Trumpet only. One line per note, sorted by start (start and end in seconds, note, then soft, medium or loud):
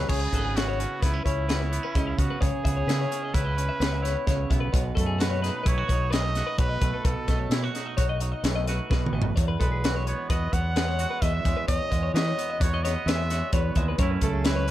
0.00 0.10 B4 medium
0.09 0.58 G#4 loud
0.56 1.04 F#4 medium
1.03 1.24 E4 medium
1.25 2.20 E4 medium
2.18 2.40 F#4 medium
2.41 3.36 G#4 medium
3.34 4.50 B4 medium
5.00 5.23 A4 medium
5.22 5.69 B4 medium
5.68 6.13 C#5 medium
6.12 6.59 D#5 loud
6.60 7.06 B4 loud
7.05 7.51 A4 medium
9.61 10.03 B4 medium
10.07 10.30 C#5 medium
10.29 10.54 D#5 medium
10.53 11.23 F#5 medium
11.22 11.67 E5 loud
11.68 12.11 D#5 loud
12.15 12.63 D#5 loud
12.62 12.85 C#5 medium
12.83 13.09 D#5 medium
13.08 13.53 E5 loud
13.54 13.86 B4 medium
14.23 14.48 A4 medium
14.46 14.71 B4 medium